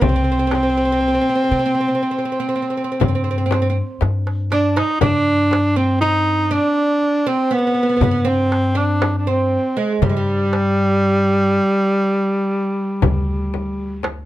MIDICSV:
0, 0, Header, 1, 6, 480
1, 0, Start_track
1, 0, Tempo, 1001669
1, 9, Time_signature, 10, 3, 24, 8
1, 6831, End_track
2, 0, Start_track
2, 0, Title_t, "Oud"
2, 0, Program_c, 0, 24
2, 6, Note_on_c, 0, 60, 63
2, 37, Note_off_c, 0, 60, 0
2, 42, Note_on_c, 0, 60, 43
2, 70, Note_off_c, 0, 60, 0
2, 76, Note_on_c, 0, 60, 51
2, 110, Note_off_c, 0, 60, 0
2, 116, Note_on_c, 0, 60, 41
2, 146, Note_off_c, 0, 60, 0
2, 152, Note_on_c, 0, 60, 49
2, 182, Note_off_c, 0, 60, 0
2, 188, Note_on_c, 0, 60, 47
2, 220, Note_off_c, 0, 60, 0
2, 226, Note_on_c, 0, 60, 44
2, 256, Note_off_c, 0, 60, 0
2, 262, Note_on_c, 0, 60, 36
2, 294, Note_off_c, 0, 60, 0
2, 302, Note_on_c, 0, 60, 38
2, 328, Note_off_c, 0, 60, 0
2, 333, Note_on_c, 0, 60, 34
2, 365, Note_off_c, 0, 60, 0
2, 371, Note_on_c, 0, 60, 47
2, 403, Note_off_c, 0, 60, 0
2, 408, Note_on_c, 0, 60, 40
2, 436, Note_off_c, 0, 60, 0
2, 442, Note_on_c, 0, 60, 46
2, 474, Note_off_c, 0, 60, 0
2, 482, Note_on_c, 0, 60, 33
2, 512, Note_off_c, 0, 60, 0
2, 518, Note_on_c, 0, 60, 41
2, 543, Note_off_c, 0, 60, 0
2, 549, Note_on_c, 0, 60, 39
2, 575, Note_off_c, 0, 60, 0
2, 581, Note_on_c, 0, 60, 45
2, 614, Note_off_c, 0, 60, 0
2, 620, Note_on_c, 0, 60, 40
2, 643, Note_off_c, 0, 60, 0
2, 649, Note_on_c, 0, 60, 43
2, 685, Note_off_c, 0, 60, 0
2, 690, Note_on_c, 0, 60, 37
2, 720, Note_off_c, 0, 60, 0
2, 726, Note_on_c, 0, 60, 48
2, 757, Note_off_c, 0, 60, 0
2, 762, Note_on_c, 0, 60, 42
2, 788, Note_off_c, 0, 60, 0
2, 793, Note_on_c, 0, 60, 50
2, 829, Note_off_c, 0, 60, 0
2, 837, Note_on_c, 0, 60, 38
2, 860, Note_off_c, 0, 60, 0
2, 865, Note_on_c, 0, 60, 40
2, 896, Note_off_c, 0, 60, 0
2, 901, Note_on_c, 0, 60, 36
2, 928, Note_off_c, 0, 60, 0
2, 933, Note_on_c, 0, 60, 38
2, 965, Note_off_c, 0, 60, 0
2, 970, Note_on_c, 0, 60, 36
2, 1006, Note_off_c, 0, 60, 0
2, 1012, Note_on_c, 0, 60, 41
2, 1041, Note_off_c, 0, 60, 0
2, 1047, Note_on_c, 0, 60, 35
2, 1074, Note_off_c, 0, 60, 0
2, 1080, Note_on_c, 0, 60, 44
2, 1106, Note_off_c, 0, 60, 0
2, 1112, Note_on_c, 0, 60, 39
2, 1143, Note_off_c, 0, 60, 0
2, 1149, Note_on_c, 0, 60, 49
2, 1186, Note_off_c, 0, 60, 0
2, 1192, Note_on_c, 0, 60, 41
2, 1219, Note_off_c, 0, 60, 0
2, 1225, Note_on_c, 0, 60, 41
2, 1251, Note_off_c, 0, 60, 0
2, 1257, Note_on_c, 0, 60, 36
2, 1289, Note_off_c, 0, 60, 0
2, 1295, Note_on_c, 0, 60, 38
2, 1323, Note_off_c, 0, 60, 0
2, 1328, Note_on_c, 0, 60, 36
2, 1356, Note_off_c, 0, 60, 0
2, 1362, Note_on_c, 0, 60, 40
2, 1392, Note_off_c, 0, 60, 0
2, 1398, Note_on_c, 0, 60, 37
2, 1431, Note_off_c, 0, 60, 0
2, 1437, Note_on_c, 0, 60, 43
2, 1471, Note_off_c, 0, 60, 0
2, 1477, Note_on_c, 0, 60, 41
2, 1504, Note_off_c, 0, 60, 0
2, 1509, Note_on_c, 0, 60, 45
2, 1546, Note_off_c, 0, 60, 0
2, 1553, Note_on_c, 0, 60, 44
2, 1579, Note_off_c, 0, 60, 0
2, 1585, Note_on_c, 0, 60, 47
2, 1613, Note_off_c, 0, 60, 0
2, 1619, Note_on_c, 0, 60, 46
2, 1651, Note_off_c, 0, 60, 0
2, 1657, Note_on_c, 0, 60, 49
2, 1689, Note_off_c, 0, 60, 0
2, 1694, Note_on_c, 0, 60, 42
2, 1729, Note_off_c, 0, 60, 0
2, 1734, Note_on_c, 0, 60, 50
2, 1767, Note_off_c, 0, 60, 0
2, 1772, Note_on_c, 0, 60, 44
2, 1803, Note_off_c, 0, 60, 0
2, 2166, Note_on_c, 0, 62, 72
2, 2281, Note_off_c, 0, 62, 0
2, 2283, Note_on_c, 0, 63, 76
2, 2401, Note_off_c, 0, 63, 0
2, 2403, Note_on_c, 0, 62, 77
2, 2760, Note_off_c, 0, 62, 0
2, 2762, Note_on_c, 0, 60, 68
2, 2881, Note_off_c, 0, 60, 0
2, 2883, Note_on_c, 0, 63, 77
2, 3117, Note_off_c, 0, 63, 0
2, 3119, Note_on_c, 0, 62, 78
2, 3480, Note_off_c, 0, 62, 0
2, 3481, Note_on_c, 0, 60, 76
2, 3598, Note_on_c, 0, 59, 70
2, 3605, Note_off_c, 0, 60, 0
2, 3629, Note_off_c, 0, 59, 0
2, 3635, Note_on_c, 0, 59, 46
2, 3669, Note_off_c, 0, 59, 0
2, 3675, Note_on_c, 0, 59, 46
2, 3705, Note_off_c, 0, 59, 0
2, 3711, Note_on_c, 0, 59, 43
2, 3746, Note_off_c, 0, 59, 0
2, 3751, Note_on_c, 0, 59, 53
2, 3777, Note_off_c, 0, 59, 0
2, 3783, Note_on_c, 0, 59, 46
2, 3811, Note_off_c, 0, 59, 0
2, 3817, Note_on_c, 0, 59, 48
2, 3845, Note_off_c, 0, 59, 0
2, 3850, Note_on_c, 0, 59, 49
2, 3882, Note_off_c, 0, 59, 0
2, 3887, Note_on_c, 0, 59, 57
2, 3926, Note_off_c, 0, 59, 0
2, 3952, Note_on_c, 0, 60, 78
2, 4191, Note_off_c, 0, 60, 0
2, 4193, Note_on_c, 0, 62, 64
2, 4440, Note_off_c, 0, 62, 0
2, 4442, Note_on_c, 0, 60, 59
2, 4680, Note_on_c, 0, 56, 64
2, 4690, Note_off_c, 0, 60, 0
2, 4803, Note_off_c, 0, 56, 0
2, 4805, Note_on_c, 0, 55, 55
2, 4835, Note_off_c, 0, 55, 0
2, 4837, Note_on_c, 0, 56, 48
2, 4870, Note_off_c, 0, 56, 0
2, 4872, Note_on_c, 0, 55, 62
2, 6708, Note_off_c, 0, 55, 0
2, 6831, End_track
3, 0, Start_track
3, 0, Title_t, "Tenor saxophone"
3, 0, Program_c, 1, 66
3, 14, Note_on_c, 1, 60, 84
3, 1926, Note_off_c, 1, 60, 0
3, 2166, Note_on_c, 1, 62, 81
3, 2288, Note_on_c, 1, 63, 87
3, 2295, Note_off_c, 1, 62, 0
3, 2398, Note_off_c, 1, 63, 0
3, 2401, Note_on_c, 1, 62, 102
3, 2765, Note_on_c, 1, 60, 82
3, 2772, Note_off_c, 1, 62, 0
3, 2875, Note_off_c, 1, 60, 0
3, 2878, Note_on_c, 1, 63, 95
3, 3125, Note_on_c, 1, 62, 92
3, 3132, Note_off_c, 1, 63, 0
3, 3488, Note_on_c, 1, 60, 79
3, 3496, Note_off_c, 1, 62, 0
3, 3611, Note_on_c, 1, 59, 82
3, 3618, Note_off_c, 1, 60, 0
3, 3965, Note_on_c, 1, 60, 80
3, 3972, Note_off_c, 1, 59, 0
3, 4204, Note_on_c, 1, 62, 76
3, 4211, Note_off_c, 1, 60, 0
3, 4398, Note_off_c, 1, 62, 0
3, 4400, Note_on_c, 1, 62, 52
3, 4450, Note_on_c, 1, 60, 72
3, 4457, Note_off_c, 1, 62, 0
3, 4686, Note_on_c, 1, 56, 68
3, 4694, Note_off_c, 1, 60, 0
3, 4759, Note_off_c, 1, 56, 0
3, 4759, Note_on_c, 1, 56, 50
3, 4808, Note_on_c, 1, 55, 87
3, 4815, Note_off_c, 1, 56, 0
3, 6729, Note_off_c, 1, 55, 0
3, 6831, End_track
4, 0, Start_track
4, 0, Title_t, "Upright bass"
4, 0, Program_c, 2, 32
4, 8, Note_on_c, 2, 36, 75
4, 561, Note_off_c, 2, 36, 0
4, 725, Note_on_c, 2, 48, 74
4, 910, Note_off_c, 2, 48, 0
4, 1450, Note_on_c, 2, 43, 82
4, 1817, Note_off_c, 2, 43, 0
4, 1925, Note_on_c, 2, 43, 84
4, 2294, Note_off_c, 2, 43, 0
4, 2404, Note_on_c, 2, 43, 77
4, 3143, Note_off_c, 2, 43, 0
4, 3836, Note_on_c, 2, 43, 83
4, 4579, Note_off_c, 2, 43, 0
4, 4801, Note_on_c, 2, 43, 70
4, 5543, Note_off_c, 2, 43, 0
4, 6246, Note_on_c, 2, 38, 82
4, 6831, Note_off_c, 2, 38, 0
4, 6831, End_track
5, 0, Start_track
5, 0, Title_t, "Darbuka"
5, 9, Note_on_c, 9, 64, 82
5, 57, Note_off_c, 9, 64, 0
5, 128, Note_on_c, 9, 62, 22
5, 176, Note_off_c, 9, 62, 0
5, 246, Note_on_c, 9, 63, 66
5, 294, Note_off_c, 9, 63, 0
5, 488, Note_on_c, 9, 62, 23
5, 536, Note_off_c, 9, 62, 0
5, 729, Note_on_c, 9, 62, 26
5, 777, Note_off_c, 9, 62, 0
5, 1447, Note_on_c, 9, 64, 74
5, 1495, Note_off_c, 9, 64, 0
5, 1688, Note_on_c, 9, 63, 66
5, 1736, Note_off_c, 9, 63, 0
5, 1927, Note_on_c, 9, 63, 49
5, 1975, Note_off_c, 9, 63, 0
5, 2046, Note_on_c, 9, 62, 55
5, 2094, Note_off_c, 9, 62, 0
5, 2165, Note_on_c, 9, 63, 62
5, 2213, Note_off_c, 9, 63, 0
5, 2287, Note_on_c, 9, 62, 87
5, 2335, Note_off_c, 9, 62, 0
5, 2408, Note_on_c, 9, 64, 78
5, 2456, Note_off_c, 9, 64, 0
5, 2528, Note_on_c, 9, 62, 20
5, 2576, Note_off_c, 9, 62, 0
5, 2649, Note_on_c, 9, 63, 71
5, 2697, Note_off_c, 9, 63, 0
5, 2890, Note_on_c, 9, 62, 21
5, 2938, Note_off_c, 9, 62, 0
5, 3128, Note_on_c, 9, 62, 21
5, 3176, Note_off_c, 9, 62, 0
5, 3367, Note_on_c, 9, 62, 22
5, 3415, Note_off_c, 9, 62, 0
5, 3846, Note_on_c, 9, 64, 72
5, 3894, Note_off_c, 9, 64, 0
5, 4083, Note_on_c, 9, 63, 64
5, 4131, Note_off_c, 9, 63, 0
5, 4321, Note_on_c, 9, 63, 74
5, 4369, Note_off_c, 9, 63, 0
5, 4804, Note_on_c, 9, 64, 88
5, 4852, Note_off_c, 9, 64, 0
5, 4926, Note_on_c, 9, 62, 20
5, 4974, Note_off_c, 9, 62, 0
5, 5046, Note_on_c, 9, 63, 66
5, 5094, Note_off_c, 9, 63, 0
5, 5285, Note_on_c, 9, 62, 23
5, 5333, Note_off_c, 9, 62, 0
5, 5768, Note_on_c, 9, 62, 22
5, 5815, Note_off_c, 9, 62, 0
5, 6246, Note_on_c, 9, 64, 77
5, 6293, Note_off_c, 9, 64, 0
5, 6729, Note_on_c, 9, 63, 70
5, 6777, Note_off_c, 9, 63, 0
5, 6831, End_track
6, 0, Start_track
6, 0, Title_t, "Frame drum"
6, 10, Note_on_c, 9, 64, 75
6, 58, Note_off_c, 9, 64, 0
6, 249, Note_on_c, 9, 64, 59
6, 297, Note_off_c, 9, 64, 0
6, 1443, Note_on_c, 9, 64, 83
6, 1491, Note_off_c, 9, 64, 0
6, 1681, Note_on_c, 9, 64, 70
6, 1729, Note_off_c, 9, 64, 0
6, 1921, Note_on_c, 9, 64, 60
6, 1969, Note_off_c, 9, 64, 0
6, 2401, Note_on_c, 9, 64, 79
6, 2449, Note_off_c, 9, 64, 0
6, 2642, Note_on_c, 9, 64, 57
6, 2690, Note_off_c, 9, 64, 0
6, 3839, Note_on_c, 9, 64, 81
6, 3887, Note_off_c, 9, 64, 0
6, 4321, Note_on_c, 9, 64, 64
6, 4369, Note_off_c, 9, 64, 0
6, 4801, Note_on_c, 9, 64, 75
6, 4849, Note_off_c, 9, 64, 0
6, 6240, Note_on_c, 9, 64, 85
6, 6288, Note_off_c, 9, 64, 0
6, 6487, Note_on_c, 9, 64, 55
6, 6535, Note_off_c, 9, 64, 0
6, 6724, Note_on_c, 9, 64, 56
6, 6772, Note_off_c, 9, 64, 0
6, 6831, End_track
0, 0, End_of_file